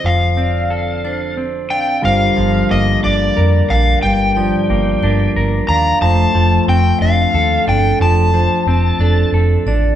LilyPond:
<<
  \new Staff \with { instrumentName = "Electric slide guitar" } { \time 6/8 \key g \minor \tempo 4. = 60 f''2 r8 g''8 | f''4 ees''8 d''4 f''8 | g''2 r8 bes''8 | a''4 g''8 f''4 g''8 |
a''2 r4 | }
  \new Staff \with { instrumentName = "Vibraphone" } { \time 6/8 \key g \minor c''8 d''4 c''4 f''8 | c''4 r4 bes'8 bes'8~ | bes'8 d''4 bes'4 f''8 | c''4 r4 a'8 a'8~ |
a'8 c''4 a'4 d''8 | }
  \new Staff \with { instrumentName = "Pedal steel guitar" } { \time 6/8 \key g \minor << { <c' a'>2. | <g bes'>2.~ | <g bes'>2. | <a c''>2.~ |
<a c''>2. | } \\ { <d f'>2. | <d f'>2.~ | <d f'>2.~ | <d f'>2.~ |
<d f'>2. | } >> }
  \new Staff \with { instrumentName = "Clean electric guitar" } { \time 6/8 \key g \minor <f c' a'>8 c'8 a'8 d'8 c'8 d'8 | g,8 f8 bes8 d'8 bes'8 d'8 | g,8 f8 bes8 d'8 bes'8 d'8 | f8 f8 c'8 d'8 a'8 d'8 |
f8 f8 c'8 d'8 a'8 d'8 | }
  \new Staff \with { instrumentName = "Picked electric bass" } { \clef bass \time 6/8 \key g \minor f,,2. | g,,8 g,,8 g,,8 g,,8 f,8 bes,,8 | g,,4 g,,8 g,,8 g,,8 ees,8 | f,,8 f,,8 f,,8 f,,8 ees,8 g,,8 |
f,,4 f,,8 f,,8 f,,8 a,,8 | }
>>